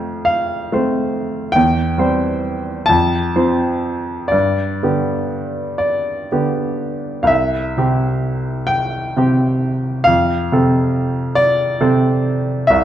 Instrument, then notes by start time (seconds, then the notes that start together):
grand piano
Already playing: F2 A3 C4 C5 F5
0.25 F5
0.72 A3 C4 C5
1.52 E2 G5
1.98 G3 C4 C5
2.86 F2 A5
3.36 F3 C4 C5
4.28 G2 D5
4.83 D3 B3 G4
5.78 D5
6.32 D3 B3 G4
7.23 C2 F5
7.27 E5
7.77 C3 C4 G4
8.67 G5
9.16 C3 C4 G4
10.04 F2 F5
10.52 C3 C4 A4
11.35 D5
11.80 C3 C4 A4
12.67 C2 E5